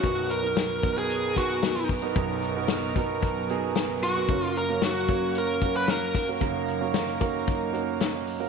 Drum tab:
HH |xxxxxxxo|xxxxxxxo|xxxxxxxo|xxxxxxxo|
SD |--o---o-|--o---o-|--o---oo|--o---o-|
BD |o--o-o-o|o--oo---|o--o-o-o|o--oo---|